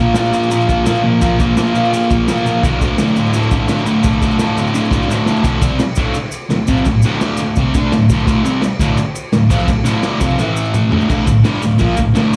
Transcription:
Already playing: distorted electric guitar A#2 F3 A#3
0.14 distorted electric guitar A#2 F3 A#3, snare, crash, shaker
0.25 shaker
0.33 distorted electric guitar A#2 F3 A#3, shaker
0.43 shaker
0.50 distorted electric guitar A#2 F3 A#3, crash, shaker
0.61 shaker
0.68 distorted electric guitar A#2 F3 A#3, kick, shaker
0.85 distorted electric guitar A#2 F3 A#3, snare, crash, shaker
0.95 shaker
1.03 distorted electric guitar A#2 F3 A#3
1.21 distorted electric guitar A#2 F3 A#3, kick, crash, shaker
1.38 distorted electric guitar A#2 F3 A#3, kick, shaker
1.56 distorted electric guitar A#2 F3 A#3, snare, crash, shaker
1.66 shaker
1.73 distorted electric guitar A#2 F3 A#3, shaker
1.85 shaker
1.92 distorted electric guitar A#2 F3 A#3, crash, shaker
2.03 shaker
2.10 distorted electric guitar A#2 F3 A#3, kick, shaker
2.28 distorted electric guitar A#2 F3 A#3, snare, crash, shaker
2.37 shaker
2.45 distorted electric guitar A#2 F3 A#3, shaker
2.63 distorted electric guitar D2 A2 D3, kick, crash, shaker
2.81 distorted electric guitar D2 A2 D3, kick, shaker
2.98 distorted electric guitar D2 A2 D3, snare, crash, shaker
3.07 shaker
3.16 distorted electric guitar D2 A2 D3, shaker
3.26 shaker
3.34 distorted electric guitar D2 A2 D3, crash, shaker
3.43 shaker
3.51 distorted electric guitar D2 A2 D3, kick, shaker
3.68 distorted electric guitar D2 A2 D3, snare, crash, shaker
3.78 shaker
3.85 distorted electric guitar D2 A2 D3, shaker
4.03 distorted electric guitar D2 A2 D3, kick, crash, shaker
4.13 shaker
4.21 distorted electric guitar D2 A2 D3, kick, shaker
4.31 shaker
4.39 distorted electric guitar D2 A2 D3, snare, crash, shaker
4.57 distorted electric guitar D2 A2 D3, shaker
4.67 shaker
4.73 distorted electric guitar D2 A2 D3, crash, shaker
4.85 shaker
4.91 distorted electric guitar D2 A2 D3, kick, shaker
5.02 shaker
5.08 distorted electric guitar D2 A2 D3, snare, shaker
5.26 distorted electric guitar D2 A2 D3, snare, shaker
5.36 shaker
5.44 distorted electric guitar D2 A2 D3, kick, crash, shaker
5.61 distorted electric guitar C3 G3 C4, kick, crash, shaker
5.79 muted distorted electric guitar stroke, snare, crash, shaker
5.96 distorted electric guitar D2 A2 D3, kick, crash, shaker
6.14 crash, shaker
6.25 snare
6.32 crash, shaker
6.50 distorted electric guitar D2 A2, snare, crash, shaker
6.67 distorted electric guitar F2 C3 F3, kick, crash, shaker
6.77 shaker
6.85 distorted electric guitar D2 A2, kick, crash, shaker
7.02 distorted electric guitar D2 A2 D3, crash, shaker
7.13 snare
7.21 snare, crash, shaker
7.37 distorted electric guitar D2, crash, shaker
7.41 distorted electric guitar A2
7.56 distorted electric guitar C3 G3 C4, kick, crash, shaker
7.74 distorted electric guitar D3 A3 D4, kick, crash, shaker
7.92 distorted electric guitar D2 A2, snare, crash, shaker
8.10 distorted electric guitar D2 A2 D3, kick, crash, shaker
8.19 shaker
8.26 distorted electric guitar D2 A2 D3, kick, crash, shaker
8.44 distorted electric guitar C3 G3 C4, crash, shaker
8.62 muted distorted electric guitar stroke, snare, crash, shaker
8.79 distorted electric guitar D2 A2 D3, kick, crash, shaker
8.97 crash, shaker
9.15 crash, shaker
9.33 distorted electric guitar D2 A2, snare, crash, shaker
9.49 distorted electric guitar F2 C3 F3, kick, crash, shaker
9.66 distorted electric guitar D2 A2, kick, crash, shaker
9.84 distorted electric guitar D2 A2 D3, crash, shaker
10.03 snare, crash, shaker
10.20 distorted electric guitar F2 C3 F3, kick, crash, shaker
10.38 distorted electric guitar A2 E3 A3, snare, shaker
10.57 shaker
10.65 shaker
10.74 mid tom, shaker
10.92 distorted electric guitar D2 A2 D3, floor tom
11.01 shaker
11.09 distorted electric guitar D2 A2 D3, kick, crash, shaker
11.26 distorted electric guitar D2 A2, kick, open hi-hat, shaker
11.44 distorted electric guitar G2 D3 G3, snare, open hi-hat, shaker
11.61 distorted electric guitar D2 A2, open hi-hat, shaker
11.78 distorted electric guitar A#2 F3 A#3, kick, open hi-hat, shaker
11.97 distorted electric guitar D2 A2, kick, open hi-hat, shaker
12.14 distorted electric guitar D2 A2 D3, snare, open hi-hat, shaker

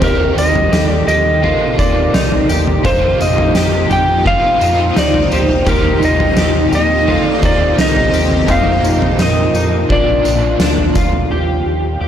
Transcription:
Already playing: vibraphone A#4
0.00 analog synth bass D#2, ambient pad A#2 C4 D#4 G4, overdriven electric guitar D#3 G3 A#3 D#4, clean electric guitar G4, electric slide guitar A#4, kick, floor tom, crash, tambourine
0.05 overdriven electric guitar G4 C5
0.37 analog synth bass D#2, electric slide guitar D#5, tambourine
0.55 floor tom
0.72 analog synth bass D#2, clean electric guitar G4, vibraphone A4, snare, tambourine
0.89 electric slide guitar D5
1.07 analog synth bass D#2, clean electric guitar G4, electric slide guitar D#5, tambourine
1.42 overdriven electric guitar A#3 D#4 G4 C5, clean electric guitar F4, vibraphone A#4, floor tom
1.78 analog synth bass D#2, overdriven electric guitar D#4 G4 C5, electric slide guitar D5, kick, tambourine
1.82 overdriven electric guitar A#3
2.14 analog synth bass C2, clean electric guitar D#4, snare, tambourine
2.32 floor tom
2.49 analog synth bass D#2, clean electric guitar G4, tambourine
2.67 floor tom
2.83 analog synth bass F2, overdriven electric guitar F3 A#3 D#4, ambient pad C4 F4, clean electric guitar F4, electric slide guitar C5, kick, floor tom, tambourine
2.87 overdriven electric guitar A#4 C5
3.21 analog synth bass F2, electric slide guitar D#5, tambourine
3.38 floor tom
3.55 analog synth bass F2, clean electric guitar G4, snare, tambourine
3.90 analog synth bass F2, clean electric guitar G4, electric slide guitar G5, floor tom, tambourine
4.25 overdriven electric guitar A#3 D#4 A#4 C5, clean electric guitar F4, electric slide guitar F5, kick, floor tom
4.61 analog synth bass F2, overdriven electric guitar D#4 A#4 C5, tambourine
4.96 analog synth bass D2, clean electric guitar D#4, vibraphone C5, electric slide guitar D5, snare, tambourine
5.14 floor tom
5.32 analog synth bass D2, clean electric guitar G4, electric slide guitar C5, tambourine
5.49 floor tom
5.65 analog synth bass D#2, overdriven electric guitar D#3 G3 A#3 D#4, clean electric guitar G4, ambient pad G4, electric slide guitar A#4, kick, floor tom, tambourine
5.70 overdriven electric guitar G4 C5
6.02 analog synth bass D#2, electric slide guitar D#5, tambourine
6.20 floor tom
6.37 analog synth bass D#2, clean electric guitar G4, snare, tambourine
6.72 analog synth bass D#2, clean electric guitar G4, electric slide guitar D#5, tambourine
7.06 overdriven electric guitar A#3 D#4 G4 C5, clean electric guitar F4, vibraphone A4, floor tom
7.25 electric slide guitar D5
7.33 vibraphone C5
7.41 analog synth bass D#2, overdriven electric guitar A#3 D#4 G4 C5, kick, tambourine
7.45 electric slide guitar D5
7.78 analog synth bass C2, clean electric guitar D#4, electric slide guitar D#5, snare, tambourine
7.96 floor tom
8.13 analog synth bass D#2, clean electric guitar G4, tambourine
8.31 floor tom
8.46 analog synth bass F2, overdriven electric guitar F3 A#3 D#4, clean electric guitar D#4, ambient pad F4, kick, floor tom, tambourine
8.51 overdriven electric guitar A#4 C5, electric slide guitar F5
8.83 analog synth bass F2, tambourine
9.02 floor tom
9.19 analog synth bass F2, clean electric guitar D#4, vibraphone A#4, electric slide guitar D#5, snare, tambourine
9.54 analog synth bass F2, clean electric guitar D#4, tambourine
9.89 analog synth bass A#1, ambient pad D3 F3, overdriven electric guitar F3 D4 F4, clean electric guitar D4, electric slide guitar D5, kick, floor tom
10.24 analog synth bass A#1, overdriven electric guitar A3 D4 F4, tambourine
10.60 analog synth bass D2, clean electric guitar D4, snare, tambourine
10.78 floor tom
10.95 analog synth bass D2, clean electric guitar F4, kick, tambourine
11.13 floor tom
11.31 analog synth bass D#2, ambient pad D#3 G3 A#3 F4, clean electric guitar G4
11.66 analog synth bass D#2
12.01 analog synth bass D#2, clean electric guitar G4

